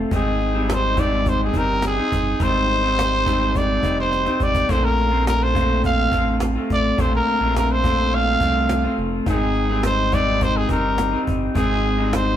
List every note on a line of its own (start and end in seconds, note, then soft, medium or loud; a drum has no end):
0.00 0.13 A3 soft
0.00 0.12 C4 soft
0.00 0.12 F4 soft
0.00 0.11 A4 medium
0.11 1.50 G#1 loud
0.11 0.54 G#2 medium
0.11 0.54 D#3 medium
0.11 0.53 C4 medium
0.11 0.53 D#4 medium
0.11 cajon bass loud
0.16 0.75 G#4 medium
0.40 cajon slap soft
0.54 0.95 G#2 soft
0.54 0.95 D#3 medium
0.54 0.96 G3 medium
0.54 0.96 C4 medium
0.54 0.96 D#4 medium
0.70 1.01 C5 medium
0.70 cajon slap loud
0.96 1.54 G#2 medium
0.96 1.53 D#3 medium
0.96 1.54 G3 medium
0.96 1.56 C4 medium
0.96 1.55 D#4 medium
0.96 1.30 D5 medium
0.96 cajon bass medium
1.26 1.42 C5 medium
1.26 cajon bass medium
1.26 cajon slap medium
1.44 1.59 G#4 medium
1.53 2.00 G1 medium
1.53 1.97 D#3 medium
1.53 1.98 G3 medium
1.53 1.96 C4 medium
1.53 1.95 D#4 medium
1.53 cajon bass medium
1.58 1.85 A#4 medium
1.82 cajon slap medium
1.87 2.45 G#4 medium
1.96 2.40 C4 soft
1.96 2.40 D#4 soft
2.12 2.35 G1 medium
2.12 cajon bass medium
2.40 3.79 G#1 loud
2.40 2.82 G#2 medium
2.40 2.82 D#3 medium
2.40 2.82 G3 medium
2.40 2.82 C4 medium
2.40 2.81 D#4 medium
2.40 3.59 C5 medium
2.40 cajon bass loud
2.69 cajon slap soft
2.82 3.24 G#2 soft
2.82 3.24 D#3 medium
2.82 3.25 G3 medium
2.82 3.25 C4 medium
2.82 3.25 D#4 medium
2.99 cajon slap loud
3.13 cajon slap soft
3.25 3.83 G#2 medium
3.25 3.82 D#3 medium
3.25 3.83 G3 medium
3.25 3.84 C4 medium
3.25 3.83 D#4 medium
3.25 cajon bass medium
3.55 3.99 D5 medium
3.55 cajon bass medium
3.55 cajon slap medium
3.83 4.29 F1 medium
3.83 4.26 D#3 soft
3.83 4.26 G3 medium
3.83 4.25 C4 medium
3.83 4.24 D#4 medium
3.83 cajon bass medium
4.00 4.45 C5 medium
4.12 cajon slap medium
4.25 4.69 G3 soft
4.25 4.69 C4 soft
4.25 4.69 D#4 soft
4.25 cajon slap medium
4.40 4.64 G#1 medium
4.40 4.73 D5 medium
4.40 cajon bass medium
4.55 cajon bass medium
4.68 6.08 A#1 loud
4.68 5.12 A#2 medium
4.68 5.12 D3 medium
4.68 5.12 A3 medium
4.68 5.11 C4 medium
4.68 5.10 F4 medium
4.68 4.86 C5 medium
4.68 cajon bass loud
4.85 5.27 A#4 medium
4.97 cajon slap soft
5.11 5.52 A#2 medium
5.11 5.53 D3 medium
5.11 5.54 A3 medium
5.11 5.54 C4 medium
5.11 5.55 F4 medium
5.27 5.45 A#4 medium
5.27 cajon slap loud
5.43 5.85 C5 medium
5.54 6.12 A#2 medium
5.54 6.10 D3 medium
5.54 6.11 A3 medium
5.54 6.13 C4 medium
5.54 6.12 F4 medium
5.54 cajon bass medium
5.83 6.39 F5 medium
5.83 cajon bass medium
5.83 cajon slap soft
6.11 6.58 A1 medium
6.11 6.54 D3 soft
6.11 6.55 A3 medium
6.11 6.55 C4 medium
6.11 6.54 F4 medium
6.11 cajon bass medium
6.40 cajon slap loud
6.55 6.97 A3 soft
6.55 6.97 C4 soft
6.55 6.98 F4 medium
6.70 6.93 A1 medium
6.70 7.02 D5 medium
6.70 cajon bass medium
6.98 7.21 A#1 loud
6.98 7.41 A#2 medium
6.98 7.41 D3 medium
6.98 7.41 A3 medium
6.98 7.40 C4 medium
6.98 7.39 F4 medium
6.98 7.14 C5 medium
6.98 cajon bass medium
7.15 7.54 A#4 medium
7.27 cajon slap soft
7.40 8.37 A#1 medium
7.40 7.82 A#2 medium
7.40 7.83 D3 medium
7.40 7.83 A3 medium
7.40 7.84 C4 medium
7.40 7.84 F4 medium
7.56 7.73 A#4 medium
7.56 cajon slap loud
7.72 8.16 C5 loud
7.83 8.41 A#2 medium
7.83 8.39 D3 medium
7.83 8.40 A3 medium
7.83 8.42 C4 medium
7.83 8.42 F4 medium
7.83 cajon bass medium
8.12 8.99 F5 loud
8.12 cajon slap medium
8.40 8.86 C2 medium
8.40 8.84 D3 medium
8.40 8.84 A3 medium
8.40 8.84 C4 medium
8.40 8.82 F4 medium
8.40 cajon bass medium
8.69 cajon slap medium
8.84 9.28 A3 soft
8.84 9.26 C4 medium
8.84 9.27 F4 medium
8.97 9.21 F1 loud
8.97 cajon slap soft
9.26 10.66 G#1 loud
9.26 9.69 G#2 medium
9.26 9.69 D#3 medium
9.26 9.69 C4 medium
9.26 9.68 D#4 medium
9.26 9.82 G#4 medium
9.26 cajon bass loud
9.54 cajon slap soft
9.69 10.11 G#2 medium
9.69 10.11 D#3 medium
9.69 10.12 G3 medium
9.69 10.12 C4 medium
9.69 10.13 D#4 medium
9.83 10.16 C5 medium
9.83 cajon slap loud
10.12 10.70 G#2 medium
10.12 10.68 D#3 medium
10.12 10.69 G3 medium
10.12 10.69 C4 medium
10.12 10.71 D#4 medium
10.12 10.45 D5 medium
10.12 cajon bass medium
10.40 10.59 C5 medium
10.40 cajon bass medium
10.40 cajon slap medium
10.57 10.71 G#4 medium
10.69 11.15 G1 medium
10.69 11.12 D#3 medium
10.69 11.13 G3 medium
10.69 11.11 C4 medium
10.69 11.10 D#4 medium
10.69 11.24 A#4 medium
10.69 cajon bass medium
10.98 cajon slap loud
11.12 11.56 G3 soft
11.12 11.55 C4 soft
11.12 11.55 D#4 medium
11.27 11.50 G1 medium
11.27 cajon bass medium
11.54 12.37 G#1 loud
11.54 11.98 G#2 medium
11.54 11.98 D#3 medium
11.54 11.97 C4 medium
11.54 11.96 D#4 medium
11.54 12.16 G#4 medium
11.54 cajon bass loud
11.83 cajon slap soft
11.98 12.37 G#2 medium
11.98 12.37 D#3 medium
11.98 12.37 G3 medium
11.98 12.37 C4 medium
11.98 12.37 D#4 medium
12.13 12.37 C5 medium
12.13 cajon slap loud
12.27 cajon slap soft